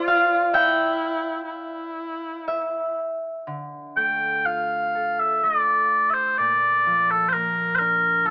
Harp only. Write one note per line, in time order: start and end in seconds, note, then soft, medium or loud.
0.00 1.13 C5 medium
0.00 1.46 D5 medium
0.08 0.59 F5 medium
0.53 2.43 E5 medium
0.53 2.43 G5 loud
2.48 4.20 E5 medium
3.47 6.43 D3 soft
3.96 5.43 A3 soft
4.46 6.98 F4 soft
4.95 6.45 A4 soft
5.43 6.45 A3 soft
6.39 8.30 A#2 medium
6.86 8.24 F3 soft
7.34 8.30 A#3 soft
7.80 8.30 D4 soft
8.25 8.30 F3 soft